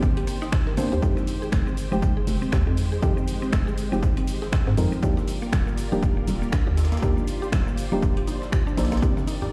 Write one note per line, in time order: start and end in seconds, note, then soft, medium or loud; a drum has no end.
0.00 0.24 G1 medium
0.00 0.75 D#3 medium
0.00 4.98 D#3 medium
0.00 0.75 A#3 medium
0.00 0.75 C4 medium
0.00 0.76 D4 medium
0.00 0.76 G4 medium
0.00 4.98 G4 medium
0.00 4.98 C5 medium
0.00 0.99 D5 medium
0.00 kick loud
0.00 tambourine medium
0.00 shaker soft
0.17 0.24 G4 loud
0.17 closed hi-hat soft
0.27 0.37 A#3 medium
0.27 open hi-hat loud
0.27 tambourine medium
0.27 shaker medium
0.42 0.51 D#4 loud
0.42 snare soft
0.42 shaker soft
0.52 0.62 D#4 medium
0.52 finger snap loud
0.52 kick loud
0.52 snare loud
0.52 tambourine medium
0.52 shaker soft
0.67 0.74 A#4 medium
0.67 snare soft
0.77 0.89 G1 medium
0.77 1.00 D#3 medium
0.77 1.00 A#3 medium
0.77 0.87 A#3 medium
0.77 1.00 C4 medium
0.77 1.00 D4 medium
0.77 1.00 C5 loud
0.77 open hi-hat loud
0.77 tambourine medium
0.77 shaker medium
0.92 1.00 D#2 loud
0.92 0.99 G4 medium
0.92 shaker soft
1.02 1.14 F2 loud
1.02 1.88 F3 medium
1.02 1.88 G#3 medium
1.02 4.98 G#3 medium
1.02 1.89 C4 medium
1.02 1.89 D#4 medium
1.02 1.89 G4 loud
1.02 kick loud
1.02 tambourine medium
1.02 shaker soft
1.17 1.24 C4 medium
1.17 snare soft
1.17 shaker soft
1.27 open hi-hat loud
1.27 tambourine medium
1.27 shaker medium
1.42 1.46 G#4 medium
1.42 shaker soft
1.52 1.64 F1 loud
1.52 finger snap loud
1.52 kick loud
1.52 snare loud
1.52 tambourine medium
1.52 shaker soft
1.67 1.77 C4 medium
1.67 shaker soft
1.77 open hi-hat loud
1.77 tambourine medium
1.77 shaker medium
1.91 2.23 F1 medium
1.91 3.00 F3 medium
1.91 3.00 G#3 medium
1.91 3.00 C4 medium
1.91 1.99 C4 medium
1.91 3.00 D#4 medium
1.91 3.00 G4 medium
1.91 shaker soft
2.02 kick loud
2.02 tambourine medium
2.02 shaker soft
2.17 2.21 G#4 medium
2.27 2.47 F1 loud
2.27 snare soft
2.27 open hi-hat loud
2.27 tambourine medium
2.27 shaker medium
2.42 2.52 C4 medium
2.42 shaker soft
2.52 2.64 D#2 loud
2.52 finger snap loud
2.52 kick loud
2.52 snare loud
2.52 tambourine medium
2.52 shaker soft
2.67 2.98 F2 medium
2.67 2.74 C4 medium
2.77 open hi-hat loud
2.77 tambourine medium
2.77 shaker medium
2.92 2.96 G#4 medium
2.92 shaker soft
3.02 3.14 F2 loud
3.02 3.88 F3 medium
3.02 3.88 G#3 medium
3.02 3.89 C4 medium
3.02 3.89 D#4 medium
3.02 3.89 G4 loud
3.02 kick loud
3.02 tambourine medium
3.02 shaker soft
3.17 3.27 C4 medium
3.17 shaker soft
3.27 open hi-hat loud
3.27 tambourine medium
3.27 shaker medium
3.42 3.49 C4 medium
3.42 shaker soft
3.52 3.64 F1 loud
3.52 finger snap loud
3.52 kick loud
3.52 snare loud
3.52 tambourine medium
3.52 shaker soft
3.67 3.71 G#4 medium
3.67 shaker soft
3.77 open hi-hat medium
3.77 tambourine medium
3.77 shaker medium
3.92 4.23 F1 medium
3.92 4.75 F3 medium
3.92 4.75 G#3 medium
3.92 4.02 C4 medium
3.92 4.75 C4 medium
3.92 4.76 D#4 medium
3.92 4.76 G4 medium
3.92 shaker soft
4.02 kick loud
4.02 tambourine medium
4.02 shaker soft
4.17 4.24 C4 medium
4.17 closed hi-hat soft
4.27 open hi-hat loud
4.27 tambourine medium
4.27 shaker medium
4.42 4.46 G#4 medium
4.42 snare soft
4.42 shaker soft
4.52 finger snap loud
4.52 kick loud
4.52 snare loud
4.52 tambourine medium
4.52 shaker soft
4.67 4.75 G#2 medium
4.67 4.77 C4 medium
4.67 snare soft
4.77 4.89 F2 medium
4.77 5.00 F3 medium
4.77 5.00 G#3 medium
4.77 5.00 C4 medium
4.77 5.00 D#4 medium
4.77 5.00 A#4 loud
4.77 open hi-hat medium
4.77 tambourine medium
4.77 shaker medium
4.92 4.99 C4 medium
4.92 shaker soft
5.02 5.14 D#2 medium
5.02 5.88 F3 medium
5.02 5.88 A#3 medium
5.02 5.89 D4 medium
5.02 5.89 D#4 medium
5.02 8.98 F4 medium
5.02 8.98 G4 medium
5.02 5.89 G4 loud
5.02 7.00 A#4 medium
5.02 9.52 D5 medium
5.02 kick loud
5.02 tambourine medium
5.02 shaker soft
5.17 5.21 G4 medium
5.17 snare soft
5.17 shaker soft
5.28 open hi-hat loud
5.28 tambourine medium
5.28 shaker medium
5.42 5.52 A#3 medium
5.42 shaker soft
5.52 5.64 D#1 loud
5.52 finger snap loud
5.52 kick loud
5.52 snare loud
5.52 tambourine medium
5.52 shaker soft
5.67 5.74 A#3 medium
5.67 shaker soft
5.78 open hi-hat medium
5.78 tambourine medium
5.78 shaker medium
5.92 6.23 D#1 medium
5.92 7.00 F3 medium
5.92 7.00 A#3 medium
5.92 7.00 D4 medium
5.92 7.00 D#4 medium
5.92 5.96 G4 medium
5.92 7.00 G4 medium
5.92 shaker soft
6.02 kick loud
6.02 tambourine medium
6.02 shaker soft
6.17 6.27 A#3 medium
6.27 6.48 D#1 loud
6.27 snare soft
6.27 open hi-hat loud
6.27 tambourine medium
6.27 shaker medium
6.42 6.49 A#3 medium
6.42 shaker soft
6.52 6.64 A#1 loud
6.52 finger snap loud
6.52 kick loud
6.52 snare loud
6.52 tambourine medium
6.52 shaker soft
6.67 6.98 D#2 medium
6.67 6.71 G4 medium
6.77 snare medium
6.77 open hi-hat medium
6.77 tambourine medium
6.77 shaker medium
6.85 snare medium
6.85 tambourine medium
6.92 7.02 A#3 medium
6.92 snare medium
6.92 tambourine medium
6.92 shaker soft
6.97 snare medium
6.97 tambourine medium
7.02 7.14 D#2 loud
7.02 7.88 F3 medium
7.02 7.88 A#3 medium
7.02 7.89 D4 medium
7.02 7.89 D#4 medium
7.02 7.89 G4 loud
7.02 9.00 C5 medium
7.02 kick loud
7.02 tambourine medium
7.02 shaker soft
7.17 7.24 A#3 medium
7.17 shaker soft
7.27 open hi-hat loud
7.27 tambourine medium
7.27 shaker medium
7.42 7.46 G4 medium
7.42 shaker soft
7.52 7.64 D#1 loud
7.52 finger snap loud
7.52 kick loud
7.52 snare loud
7.52 tambourine medium
7.52 shaker soft
7.67 7.77 A#3 medium
7.67 shaker soft
7.77 open hi-hat medium
7.77 tambourine medium
7.77 shaker medium
7.92 8.23 D#1 medium
7.92 8.75 F3 medium
7.92 8.75 A#3 medium
7.92 7.99 A#3 medium
7.92 8.75 D4 medium
7.92 8.76 D#4 medium
7.92 8.76 G4 medium
7.92 shaker soft
8.02 kick loud
8.02 tambourine medium
8.02 shaker soft
8.17 8.21 G4 medium
8.17 closed hi-hat soft
8.27 8.37 D#4 medium
8.27 open hi-hat medium
8.27 tambourine medium
8.27 shaker medium
8.42 snare soft
8.42 shaker soft
8.52 8.58 G4 loud
8.52 finger snap loud
8.52 kick loud
8.52 tambourine medium
8.52 shaker soft
8.67 8.71 D4 loud
8.67 shaker soft
8.77 8.89 A#1 medium
8.77 9.00 F3 medium
8.77 9.00 A#3 medium
8.77 9.00 D4 medium
8.77 9.00 D#4 medium
8.77 9.00 C5 loud
8.77 snare medium
8.77 open hi-hat loud
8.77 tambourine medium
8.77 shaker medium
8.85 snare medium
8.85 tambourine medium
8.92 9.00 A#1 medium
8.92 8.96 A#3 medium
8.92 snare medium
8.92 tambourine medium
8.92 shaker soft
8.97 snare medium
8.97 tambourine medium
9.02 9.14 C2 loud
9.02 9.52 D#3 medium
9.02 9.52 A#3 medium
9.02 9.52 C4 medium
9.02 9.52 D4 medium
9.02 9.52 G4 medium
9.02 9.52 G4 loud
9.02 9.52 A#4 medium
9.02 kick loud
9.02 tambourine medium
9.02 shaker soft
9.17 9.24 A#3 medium
9.17 snare soft
9.17 high conga medium
9.17 shaker soft
9.27 9.37 D#4 medium
9.27 open hi-hat loud
9.27 tambourine medium
9.27 shaker medium
9.42 9.46 G4 medium
9.42 low conga medium
9.42 shaker soft